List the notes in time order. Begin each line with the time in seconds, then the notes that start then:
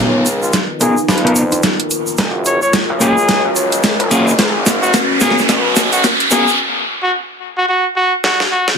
Already playing: B3 D#4 F4 A#4
0.00 C#2 D#4 F4 A#4 B4, riser
0.26 closed hi-hat, shaker
0.42 F4, shaker
0.53 snare, closed hi-hat, shaker
0.81 B3 D#4 F4 G#4 A#4, cross-stick, closed hi-hat, shaker
0.97 shaker
1.08 F2 B4, snare, closed hi-hat, shaker
1.18 closed hi-hat
1.24 B3 D#4 F4 A#4 B4, cross-stick, closed hi-hat
1.36 closed hi-hat, shaker
1.52 cross-stick, closed hi-hat, shaker
1.63 snare, closed hi-hat, shaker
1.80 closed hi-hat
1.91 closed hi-hat, shaker
2.07 shaker
2.17 F#1 F#4 C#5, snare, closed hi-hat, shaker
2.45 C#5, closed hi-hat, shaker
2.62 C#5, shaker
2.73 snare, closed hi-hat, shaker
2.90 C#2
3.01 A#3 C#4 F4 G#4, cross-stick, closed hi-hat, shaker
3.18 shaker
3.28 snare, closed hi-hat, shaker
3.45 C#2
3.56 closed hi-hat, shaker
3.72 closed hi-hat, shaker
3.83 snare, closed hi-hat, shaker
4.00 F#1, closed hi-hat
4.11 A#3 C#4 F4 G#4, closed hi-hat, shaker
4.28 shaker
4.38 C#4 F#4 B4, snare, closed hi-hat, shaker
4.66 snare, closed hi-hat, shaker
4.82 F#4, shaker
4.93 snare, closed hi-hat, shaker
5.20 B3 C#4 F#4 G#4 A#4, snare, closed hi-hat, shaker
5.31 snare
5.38 snare, shaker
5.49 B1, snare, closed hi-hat, shaker
5.76 snare, closed hi-hat, shaker
5.92 F#4, closed hi-hat, shaker
6.04 snare, closed hi-hat, shaker
6.20 closed hi-hat
6.31 B3 C#4 F#4 G#4 A#4, snare, closed hi-hat, shaker
6.47 shaker
7.03 F#4
7.57 F#4
7.69 F#4
7.96 F#4
8.24 F#4, snare
8.40 snare
8.51 F#4
8.68 snare